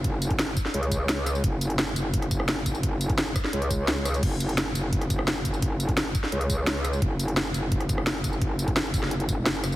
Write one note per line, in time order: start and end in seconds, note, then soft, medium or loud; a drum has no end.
0.00 0.55 F#1 loud
0.04 kick loud
0.04 closed hi-hat medium
0.22 closed hi-hat medium
0.22 tambourine medium
0.30 kick loud
0.30 closed hi-hat soft
0.39 snare loud
0.39 closed hi-hat loud
0.57 kick loud
0.57 closed hi-hat medium
0.57 tambourine medium
0.65 snare soft
0.74 1.08 C#2 loud
0.74 closed hi-hat loud
0.83 closed hi-hat soft
0.92 kick medium
0.92 closed hi-hat medium
0.92 tambourine medium
1.09 1.42 C#2 loud
1.09 snare loud
1.09 closed hi-hat medium
1.26 cross-stick soft
1.26 closed hi-hat medium
1.26 tambourine medium
1.35 tambourine soft
1.44 1.95 F#1 loud
1.44 kick loud
1.44 closed hi-hat loud
1.61 closed hi-hat medium
1.61 tambourine medium
1.70 closed hi-hat soft
1.79 snare loud
1.79 closed hi-hat loud
1.96 3.34 F#1 loud
1.96 closed hi-hat medium
1.96 tambourine medium
2.14 kick loud
2.14 closed hi-hat loud
2.22 cross-stick soft
2.22 closed hi-hat soft
2.31 kick loud
2.31 closed hi-hat medium
2.31 tambourine medium
2.40 cross-stick medium
2.48 snare loud
2.48 closed hi-hat medium
2.66 kick medium
2.66 closed hi-hat medium
2.66 tambourine medium
2.75 tambourine soft
2.83 kick loud
2.83 closed hi-hat loud
3.01 closed hi-hat medium
3.01 tambourine medium
3.10 kick loud
3.10 closed hi-hat soft
3.18 snare loud
3.18 closed hi-hat loud
3.36 kick loud
3.36 cross-stick medium
3.36 closed hi-hat medium
3.36 tambourine medium
3.44 snare soft
3.53 4.22 C#2 loud
3.53 closed hi-hat loud
3.62 closed hi-hat soft
3.71 kick medium
3.71 closed hi-hat medium
3.71 tambourine medium
3.88 snare loud
3.88 closed hi-hat medium
4.05 cross-stick soft
4.05 closed hi-hat medium
4.05 tambourine medium
4.14 closed hi-hat soft
4.14 tambourine soft
4.23 4.74 F#1 loud
4.23 kick loud
4.23 closed hi-hat loud
4.23 crash medium
4.40 closed hi-hat medium
4.40 tambourine medium
4.49 closed hi-hat soft
4.58 snare loud
4.58 closed hi-hat loud
4.75 6.13 F#1 loud
4.75 closed hi-hat medium
4.75 tambourine medium
4.93 kick loud
4.93 closed hi-hat loud
5.01 cross-stick soft
5.01 closed hi-hat soft
5.10 kick loud
5.10 closed hi-hat medium
5.10 tambourine medium
5.19 cross-stick medium
5.28 snare loud
5.28 closed hi-hat loud
5.45 kick medium
5.45 closed hi-hat medium
5.45 tambourine medium
5.54 tambourine soft
5.62 kick loud
5.62 closed hi-hat medium
5.80 closed hi-hat medium
5.80 tambourine medium
5.89 kick loud
5.89 closed hi-hat soft
5.97 snare loud
5.97 closed hi-hat loud
6.15 kick loud
6.15 closed hi-hat medium
6.15 tambourine medium
6.24 snare soft
6.32 6.66 C#2 loud
6.32 closed hi-hat medium
6.41 closed hi-hat soft
6.50 kick medium
6.50 closed hi-hat medium
6.50 tambourine medium
6.67 7.01 C#2 loud
6.67 snare loud
6.67 closed hi-hat medium
6.85 cross-stick medium
6.85 closed hi-hat medium
6.85 tambourine medium
6.93 tambourine soft
7.02 7.53 F#1 loud
7.02 kick loud
7.02 closed hi-hat medium
7.19 closed hi-hat medium
7.19 tambourine medium
7.28 closed hi-hat soft
7.37 snare loud
7.37 closed hi-hat medium
7.54 8.92 F#1 loud
7.54 closed hi-hat medium
7.54 tambourine medium
7.72 kick loud
7.72 closed hi-hat medium
7.80 cross-stick soft
7.80 closed hi-hat soft
7.89 kick loud
7.89 closed hi-hat medium
7.89 tambourine medium
7.98 cross-stick medium
8.07 snare loud
8.07 closed hi-hat medium
8.24 kick medium
8.24 closed hi-hat medium
8.24 tambourine medium
8.33 tambourine soft
8.42 kick loud
8.42 closed hi-hat medium
8.59 closed hi-hat medium
8.59 tambourine medium
8.68 kick loud
8.68 closed hi-hat soft
8.76 snare loud
8.76 closed hi-hat medium
8.94 9.45 F#1 loud
8.94 kick loud
8.94 closed hi-hat medium
8.94 tambourine medium
9.03 snare soft
9.11 closed hi-hat medium
9.20 closed hi-hat soft
9.29 kick medium
9.29 closed hi-hat medium
9.29 tambourine medium
9.46 9.76 F#1 loud
9.46 snare loud
9.46 closed hi-hat medium
9.55 tambourine soft
9.64 cross-stick soft
9.64 closed hi-hat medium
9.64 tambourine medium
9.72 tambourine soft